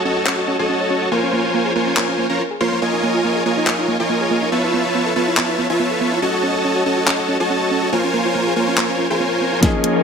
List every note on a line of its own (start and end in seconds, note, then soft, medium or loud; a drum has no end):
0.05 0.14 C#4 loud
0.05 0.56 F#4 medium
0.05 0.56 A4 medium
0.05 0.56 C#5 medium
0.05 0.56 D#5 medium
0.05 0.56 A5 medium
0.17 0.20 F#4 medium
0.26 0.35 C#4 loud
0.26 clap loud
0.38 0.43 F#4 medium
0.48 0.53 C#4 loud
0.59 1.09 F#4 medium
0.59 0.62 A4 medium
0.59 1.09 A4 medium
0.59 1.09 C#5 medium
0.59 1.09 D#5 medium
0.59 1.09 A5 medium
0.69 0.75 C#4 loud
0.80 0.88 C#5 medium
0.90 0.99 C#4 loud
1.02 1.05 F#4 medium
1.11 1.20 A#3 loud
1.11 1.73 F4 medium
1.11 1.73 A#4 medium
1.11 1.73 C5 medium
1.11 1.73 C#5 medium
1.11 1.73 G#5 loud
1.23 1.28 C#4 medium
1.33 1.38 A#3 loud
1.44 1.47 F4 medium
1.54 1.60 A#3 loud
1.66 1.73 G#4 medium
1.75 1.84 A#3 loud
1.75 2.27 F4 medium
1.75 2.27 A#4 medium
1.75 2.27 C5 medium
1.75 2.27 C#5 medium
1.75 2.27 G#5 medium
1.87 1.90 C#4 medium
1.97 2.05 A#3 loud
1.97 clap loud
2.08 2.13 C#4 medium
2.18 2.21 A#3 medium
2.29 2.34 C#4 medium
2.29 2.42 F4 medium
2.29 2.42 A#4 medium
2.29 2.42 C5 medium
2.29 2.42 C#5 medium
2.29 2.42 A#5 medium
2.39 2.45 A#4 medium
2.51 2.56 G#4 medium
2.60 2.66 A#3 medium
2.60 2.79 F4 loud
2.60 2.79 A#4 medium
2.60 2.79 C5 medium
2.60 2.79 C#5 medium
2.60 2.79 C6 loud
2.72 2.75 A#3 medium
2.82 2.90 A#3 loud
2.82 3.43 F4 medium
2.82 3.43 A#4 medium
2.82 3.43 C#5 medium
2.82 3.43 D#5 medium
2.82 3.43 G#5 loud
2.93 2.98 D#4 medium
3.03 3.09 A#3 loud
3.14 3.17 F4 medium
3.24 3.30 A#3 loud
3.36 3.43 G#4 medium
3.46 3.54 A#3 loud
3.46 3.97 F4 medium
3.46 3.97 A#4 medium
3.46 3.97 C#5 medium
3.46 3.97 D#5 medium
3.46 3.97 G#5 medium
3.57 3.60 D#4 medium
3.67 3.75 A#3 loud
3.67 clap loud
3.78 3.83 D#4 medium
3.88 3.94 A#3 loud
4.00 4.03 F4 medium
4.00 4.50 F4 medium
4.00 4.50 A#4 medium
4.00 4.50 C#5 medium
4.00 4.50 D#5 medium
4.00 4.50 G#5 medium
4.09 4.15 A#3 loud
4.21 4.28 G#4 medium
4.31 4.39 A#3 loud
4.42 4.45 D#4 medium
4.52 4.61 B3 loud
4.52 5.13 F4 medium
4.52 5.13 B4 medium
4.52 5.13 C#5 medium
4.52 5.13 E5 medium
4.52 5.13 A5 loud
4.64 4.68 E4 medium
4.73 4.79 B3 loud
4.85 4.88 F4 medium
4.95 5.00 B3 loud
5.06 5.13 A4 medium
5.16 5.24 B3 loud
5.16 5.67 F4 medium
5.16 5.67 B4 medium
5.16 5.67 C#5 medium
5.16 5.67 E5 medium
5.16 5.67 A5 medium
5.27 5.30 E4 medium
5.37 5.46 B3 loud
5.37 clap loud
5.49 5.53 E4 medium
5.58 5.64 B3 loud
5.70 6.20 F4 medium
5.70 5.73 F4 medium
5.70 6.20 B4 medium
5.70 6.20 C#5 medium
5.70 6.20 E5 medium
5.70 6.20 A5 medium
5.80 5.85 B3 loud
5.91 5.98 A4 medium
6.01 6.09 B3 loud
6.12 6.15 E4 medium
6.22 6.31 C#4 loud
6.22 6.84 F#4 medium
6.22 6.84 A4 medium
6.22 6.84 C#5 medium
6.22 6.84 D#5 medium
6.22 6.84 A5 loud
6.34 6.39 F#4 medium
6.43 6.49 C#4 loud
6.55 6.58 A4 medium
6.65 6.70 C#4 loud
6.76 6.84 C#5 medium
6.86 6.95 C#4 loud
6.86 7.37 F#4 medium
6.86 7.37 A4 medium
6.86 7.37 C#5 medium
6.86 7.37 D#5 medium
6.86 7.37 A5 medium
6.98 7.00 F#4 medium
7.07 7.16 C#4 loud
7.07 clap loud
7.19 7.24 F#4 medium
7.29 7.34 C#4 loud
7.40 7.90 F#4 medium
7.40 7.43 A4 medium
7.40 7.90 A4 medium
7.40 7.90 C#5 medium
7.40 7.90 D#5 medium
7.40 7.90 A5 medium
7.50 7.56 C#4 loud
7.61 7.69 C#5 medium
7.71 7.80 C#4 loud
7.83 7.86 F#4 medium
7.92 8.01 A#3 loud
7.92 8.54 F4 medium
7.92 8.54 A#4 medium
7.92 8.54 C5 medium
7.92 8.54 C#5 medium
7.92 8.54 G#5 loud
8.04 8.09 C#4 medium
8.14 8.19 A#3 loud
8.25 8.28 F4 medium
8.35 8.41 A#3 loud
8.47 8.54 G#4 medium
8.56 8.65 A#3 loud
8.56 9.07 F4 medium
8.56 9.07 A#4 medium
8.56 9.07 C5 medium
8.56 9.07 C#5 medium
8.56 9.07 G#5 medium
8.68 8.71 C#4 medium
8.77 8.86 A#3 loud
8.77 clap loud
8.89 8.94 C#4 medium
8.99 9.04 C#4 medium
9.10 9.60 F4 medium
9.10 9.15 G#4 medium
9.10 9.60 A#4 medium
9.10 9.60 C5 medium
9.10 9.60 C#5 medium
9.10 9.60 G#5 medium
9.20 9.24 C4 medium
9.32 9.36 C5 medium
9.41 9.47 C4 medium
9.53 9.58 F4 medium
9.60 10.03 F3 medium
9.60 10.03 A#3 medium
9.60 9.71 A#3 loud
9.60 10.03 C#4 medium
9.60 10.03 D#4 medium
9.60 10.03 C#5 medium
9.60 10.03 D#5 medium
9.60 kick medium
9.60 snare soft
9.60 closed hi-hat medium
9.60 riser medium
9.65 10.03 G#4 loud
9.74 9.79 D#4 medium
9.84 9.90 A#3 loud
9.84 closed hi-hat medium
9.95 9.98 F4 medium